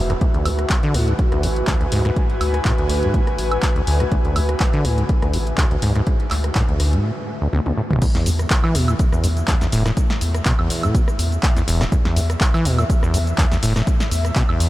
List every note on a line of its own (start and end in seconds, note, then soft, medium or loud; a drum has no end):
0.00 0.16 E1 medium
0.00 0.20 F#4 medium
0.00 0.21 B4 medium
0.00 7.04 E5 medium
0.00 0.21 G#5 medium
0.10 0.14 E2 medium
0.10 cross-stick medium
0.10 closed hi-hat soft
0.21 0.26 D2 medium
0.21 7.04 F#4 medium
0.21 kick loud
0.21 closed hi-hat soft
0.34 0.47 D2 medium
0.34 closed hi-hat soft
0.45 0.65 D2 medium
0.45 0.50 F#2 medium
0.45 open hi-hat loud
0.45 high woodblock medium
0.59 cross-stick medium
0.59 closed hi-hat soft
0.68 7.04 B4 loud
0.68 kick loud
0.68 clap loud
0.68 closed hi-hat soft
0.83 0.96 D3 medium
0.83 closed hi-hat soft
0.94 1.14 D2 medium
0.94 1.09 A2 medium
0.94 cross-stick soft
0.94 open hi-hat loud
1.08 1.14 G#2 loud
1.08 7.04 G#5 medium
1.08 closed hi-hat soft
1.19 kick loud
1.19 closed hi-hat soft
1.32 1.45 D2 medium
1.32 cross-stick medium
1.32 closed hi-hat soft
1.43 1.63 A1 medium
1.43 1.48 F#2 medium
1.43 open hi-hat loud
1.56 closed hi-hat soft
1.67 1.75 D2 medium
1.67 kick loud
1.67 cross-stick soft
1.67 clap loud
1.67 closed hi-hat soft
1.81 1.87 D2 medium
1.81 closed hi-hat soft
1.92 2.11 D2 medium
1.92 2.03 G#2 loud
1.92 open hi-hat loud
2.05 2.11 G#2 loud
2.05 cross-stick medium
2.05 closed hi-hat soft
2.16 kick loud
2.16 closed hi-hat soft
2.30 closed hi-hat soft
2.41 2.60 D2 loud
2.41 open hi-hat loud
2.41 high woodblock medium
2.54 cross-stick medium
2.54 closed hi-hat medium
2.65 2.72 A2 medium
2.65 kick loud
2.65 clap loud
2.65 closed hi-hat soft
2.78 3.04 D2 medium
2.78 closed hi-hat soft
2.89 3.09 D2 medium
2.89 open hi-hat loud
3.03 3.15 G#2 loud
3.03 closed hi-hat soft
3.14 3.21 A2 medium
3.14 kick loud
3.14 closed hi-hat medium
3.27 cross-stick medium
3.27 closed hi-hat soft
3.38 3.58 A1 medium
3.38 open hi-hat loud
3.52 closed hi-hat soft
3.52 high woodblock medium
3.62 kick loud
3.62 cross-stick soft
3.62 clap loud
3.62 closed hi-hat medium
3.76 3.82 D2 medium
3.76 closed hi-hat soft
3.87 4.07 D2 medium
3.87 4.02 D2 medium
3.87 open hi-hat loud
4.00 4.04 C#3 loud
4.00 cross-stick medium
4.00 closed hi-hat soft
4.12 4.16 D2 medium
4.12 kick loud
4.12 closed hi-hat medium
4.25 4.38 D2 medium
4.25 closed hi-hat soft
4.36 4.55 D2 loud
4.36 4.40 F#2 medium
4.36 open hi-hat loud
4.36 high woodblock medium
4.49 cross-stick medium
4.49 closed hi-hat medium
4.60 kick loud
4.60 clap loud
4.60 closed hi-hat medium
4.73 4.86 D3 medium
4.73 closed hi-hat soft
4.85 5.04 D2 loud
4.85 5.00 A2 medium
4.85 cross-stick soft
4.85 open hi-hat loud
4.98 5.04 G#2 loud
4.98 closed hi-hat medium
5.09 kick loud
5.09 closed hi-hat medium
5.22 5.35 D2 medium
5.22 cross-stick medium
5.22 closed hi-hat soft
5.33 5.53 A1 medium
5.33 5.38 F#2 medium
5.33 open hi-hat loud
5.47 closed hi-hat medium
5.58 5.65 D2 medium
5.58 kick loud
5.58 cross-stick soft
5.58 clap loud
5.58 closed hi-hat medium
5.71 5.77 D2 medium
5.71 closed hi-hat soft
5.82 6.02 D2 medium
5.82 5.93 G#2 loud
5.82 open hi-hat loud
5.95 6.02 G#2 loud
5.95 cross-stick medium
5.95 closed hi-hat medium
6.07 kick loud
6.07 closed hi-hat medium
6.20 closed hi-hat soft
6.31 6.51 D2 medium
6.31 clap soft
6.31 open hi-hat loud
6.31 high woodblock medium
6.44 cross-stick medium
6.44 closed hi-hat medium
6.55 6.63 A2 loud
6.55 kick loud
6.55 clap loud
6.55 closed hi-hat medium
6.69 6.95 D2 medium
6.69 closed hi-hat soft
6.80 6.99 D2 medium
6.80 cross-stick soft
6.80 open hi-hat loud
6.93 7.06 G#2 loud
6.93 closed hi-hat soft
7.04 7.11 A2 medium
7.42 7.48 D2 medium
7.53 7.60 D2 loud
7.53 high tom medium
7.66 7.72 D2 medium
7.66 high tom medium
7.77 7.82 A2 medium
7.91 8.00 D1 loud
7.91 mid tom medium
8.02 8.06 E2 medium
8.02 kick loud
8.02 closed hi-hat medium
8.02 crash loud
8.02 shaker soft
8.15 8.28 E2 medium
8.15 snare medium
8.15 closed hi-hat soft
8.21 14.69 E5 medium
8.26 8.46 E2 loud
8.26 8.31 G#2 medium
8.26 open hi-hat loud
8.26 shaker medium
8.39 cross-stick medium
8.39 closed hi-hat medium
8.39 shaker soft
8.50 kick loud
8.50 clap loud
8.50 closed hi-hat medium
8.50 shaker soft
8.64 8.76 E3 loud
8.64 high woodblock medium
8.75 8.94 E2 loud
8.75 8.90 B2 medium
8.75 cross-stick soft
8.75 open hi-hat loud
8.75 shaker medium
8.88 8.94 A2 loud
8.88 closed hi-hat medium
8.88 high woodblock medium
8.88 shaker soft
8.99 kick loud
8.99 closed hi-hat medium
8.99 shaker soft
9.12 9.25 E2 medium
9.12 cross-stick medium
9.12 shaker soft
9.24 9.43 E2 loud
9.24 9.28 G#2 medium
9.24 open hi-hat loud
9.24 shaker medium
9.37 closed hi-hat medium
9.37 shaker soft
9.48 9.55 E2 medium
9.48 kick loud
9.48 cross-stick soft
9.48 clap loud
9.48 closed hi-hat medium
9.48 shaker soft
9.61 9.67 E2 medium
9.61 snare soft
9.61 closed hi-hat soft
9.61 shaker soft
9.72 9.92 E1 medium
9.72 9.83 A2 loud
9.72 open hi-hat loud
9.72 shaker medium
9.86 9.92 A2 loud
9.86 cross-stick medium
9.86 snare medium
9.86 closed hi-hat medium
9.86 shaker soft
9.97 kick loud
9.97 closed hi-hat medium
9.97 shaker soft
10.10 snare medium
10.10 closed hi-hat soft
10.21 10.41 E2 loud
10.21 open hi-hat loud
10.21 shaker medium
10.35 cross-stick medium
10.35 closed hi-hat medium
10.35 shaker soft
10.45 10.53 B2 loud
10.45 kick loud
10.45 clap loud
10.45 closed hi-hat medium
10.45 shaker soft
10.59 10.85 E2 medium
10.59 high woodblock medium
10.70 10.89 E2 loud
10.70 open hi-hat loud
10.70 shaker medium
10.83 10.96 A2 loud
10.83 closed hi-hat medium
10.83 high woodblock medium
10.83 shaker soft
10.94 11.02 B2 medium
10.94 kick loud
10.94 closed hi-hat medium
10.94 shaker soft
11.08 cross-stick medium
11.08 shaker soft
11.19 11.38 E2 loud
11.19 open hi-hat loud
11.19 shaker medium
11.32 closed hi-hat medium
11.32 shaker soft
11.43 kick loud
11.43 cross-stick soft
11.43 clap loud
11.43 closed hi-hat medium
11.43 shaker soft
11.57 11.63 E2 medium
11.57 snare soft
11.57 closed hi-hat soft
11.57 shaker soft
11.68 11.87 E1 medium
11.68 11.82 E2 medium
11.68 open hi-hat loud
11.68 shaker medium
11.81 11.85 D#3 loud
11.81 cross-stick medium
11.81 snare medium
11.81 closed hi-hat medium
11.81 shaker soft
11.92 11.96 E2 medium
11.92 kick loud
11.92 closed hi-hat medium
11.92 shaker soft
12.05 12.18 E2 medium
12.05 snare medium
12.05 closed hi-hat soft
12.16 12.36 E2 loud
12.16 12.21 G#2 medium
12.16 open hi-hat loud
12.16 shaker medium
12.30 cross-stick medium
12.30 closed hi-hat medium
12.30 shaker soft
12.41 kick loud
12.41 clap loud
12.41 closed hi-hat medium
12.41 shaker soft
12.54 12.67 E3 loud
12.54 high woodblock medium
12.65 12.85 E2 medium
12.65 12.80 B2 medium
12.65 cross-stick soft
12.65 open hi-hat loud
12.65 shaker medium
12.78 12.85 A2 loud
12.78 closed hi-hat soft
12.78 high woodblock medium
12.78 shaker soft
12.90 kick loud
12.90 closed hi-hat medium
12.90 shaker soft
13.03 13.16 E2 medium
13.03 cross-stick medium
13.03 shaker soft
13.14 13.33 E2 loud
13.14 13.18 G#2 medium
13.14 open hi-hat loud
13.14 shaker medium
13.27 closed hi-hat medium
13.27 shaker soft
13.38 13.46 E2 medium
13.38 kick loud
13.38 cross-stick soft
13.38 clap loud
13.38 closed hi-hat medium
13.38 shaker soft
13.51 13.58 E2 medium
13.51 snare soft
13.51 closed hi-hat soft
13.51 shaker soft
13.63 13.82 E1 medium
13.63 13.74 A2 loud
13.63 open hi-hat loud
13.63 shaker medium
13.76 13.82 A2 loud
13.76 cross-stick medium
13.76 snare medium
13.76 shaker soft
13.87 kick loud
13.87 closed hi-hat medium
13.87 shaker soft
14.00 snare medium
14.00 closed hi-hat soft
14.00 shaker soft
14.11 14.31 E2 loud
14.11 open hi-hat loud
14.11 shaker medium
14.25 cross-stick medium
14.25 closed hi-hat medium
14.25 shaker soft
14.35 14.43 B2 loud
14.35 kick loud
14.35 clap loud
14.35 closed hi-hat medium
14.35 shaker soft
14.49 14.69 E2 medium
14.49 high woodblock medium
14.60 14.69 E2 loud
14.60 open hi-hat loud
14.60 shaker medium